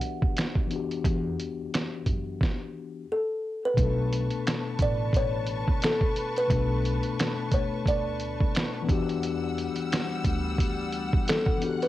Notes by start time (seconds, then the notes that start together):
Already playing: E3 B3 D4 F#4 G4 F#5
0.01 closed hi-hat
0.22 kick
0.37 finger snap, snare, closed hi-hat
0.55 kick
0.67 E3 B3, closed hi-hat
0.71 D4 F#4
0.76 G4
0.91 closed hi-hat
1.04 E2, kick, closed hi-hat
1.40 closed hi-hat
1.74 finger snap, snare, closed hi-hat
2.06 F#2, kick, closed hi-hat
2.41 kick, snare
3.12 A4
3.65 B4
3.74 B2 B3 B4 A5 C#6, kick, closed hi-hat
3.78 B1 A3 D4
3.83 A4
4.13 closed hi-hat
4.30 closed hi-hat
4.47 finger snap, snare, closed hi-hat
4.79 A1 D5, kick, closed hi-hat
5.13 C#5, kick, closed hi-hat
5.47 closed hi-hat
5.68 kick
5.82 A4, finger snap, snare, closed hi-hat
6.01 kick
6.16 closed hi-hat
6.36 B4, closed hi-hat
6.47 B1 B2 B3, kick, closed hi-hat
6.52 A3 D4
6.56 A4
6.85 closed hi-hat
7.03 closed hi-hat
7.19 finger snap, snare, closed hi-hat
7.52 D2 C#5, kick, closed hi-hat
7.86 D5, kick, closed hi-hat
8.20 closed hi-hat
8.40 kick
8.55 finger snap, snare, closed hi-hat
8.82 E3 B3
8.87 E2 G3 D4 F#4 F#5 E6, kick, closed hi-hat
8.91 G4
9.09 closed hi-hat
9.23 closed hi-hat
9.58 closed hi-hat
9.76 closed hi-hat
9.92 finger snap, snare, closed hi-hat
10.24 D2, kick, closed hi-hat
10.58 kick, closed hi-hat
10.92 closed hi-hat
11.13 kick
11.28 A4, finger snap, snare, closed hi-hat
11.46 kick
11.57 E3 B3 F#6
11.62 D4 F#4, closed hi-hat
11.66 G4
11.82 B4, closed hi-hat